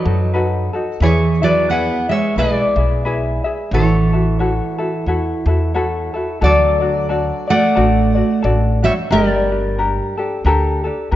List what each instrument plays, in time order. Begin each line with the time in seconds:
Already playing: steel-string acoustic guitar F#3, resonator guitar played with a steel bar B4 D#5
0.05 upright bass F#2, ukulele D#4 F#4 A4
0.34 ukulele D#4 F#4 A4 B4
0.73 ukulele D#4 F#4 A4
1.00 upright bass E2, steel-string acoustic guitar E3, ukulele E4 G#4 B4 E5, resonator guitar played with a steel bar C#5
1.05 resonator guitar played with a steel bar G#4
1.42 steel-string acoustic guitar F#3, ukulele E4 G#4 E5, resonator guitar played with a steel bar B4 D5
1.70 steel-string acoustic guitar B3, ukulele E4 G#4 B4 E5, resonator guitar played with a steel bar B4 F#5
2.09 steel-string acoustic guitar G#3, ukulele E4 G#4 E5, resonator guitar played with a steel bar C#5 E5
2.36 upright bass B1, steel-string acoustic guitar G#3, ukulele E4 G#4 B4 E5, resonator guitar played with a steel bar B4 D5
2.76 upright bass B1, ukulele E4 G#4 E5
3.05 ukulele E4 G#4 B4 E5
3.44 ukulele E4 G#4 E5
3.71 upright bass A1, steel-string acoustic guitar E3, ukulele E4 F#4 A4 C#5, resonator guitar played with a steel bar A4 C#5
4.13 ukulele E4 F#4 A4
4.39 ukulele E4 F#4 A4 C#5
4.78 ukulele E4 F#4 A4
5.06 upright bass E2, ukulele E4 F#4 A4 C#5
5.46 upright bass E2, ukulele E4 F#4 A4
5.74 ukulele E4 F#4 A4 C#5
6.14 ukulele E4 F#4 A4
6.41 upright bass D2, steel-string acoustic guitar F#3, ukulele D4 F#4 A4 D5, resonator guitar played with a steel bar D5
6.45 resonator guitar played with a steel bar A4
6.80 ukulele D4 F#4 D5
7.09 ukulele D4 F#4 A4 D5
7.47 steel-string acoustic guitar A3, ukulele D4 F#4 D5, resonator guitar played with a steel bar D5 F#5
7.75 upright bass A1, ukulele D4 F#4 A4 D5
8.15 ukulele D4 F#4 D5
8.42 upright bass A1, ukulele D4 F#4 A4 D5
8.83 steel-string acoustic guitar G3, ukulele D4 F#4, resonator guitar played with a steel bar C#5 E5
9.11 upright bass G1, steel-string acoustic guitar G3, ukulele D4 G4 A#4, resonator guitar played with a steel bar A#4 D5
9.51 ukulele D4 G4
9.79 ukulele D4 G4 A#4
10.17 ukulele D4 G4 A4
10.45 upright bass D2, ukulele D4 G4 A4 A#4
10.84 ukulele D4 G4 A4
11.11 upright bass D2, ukulele D4 A#4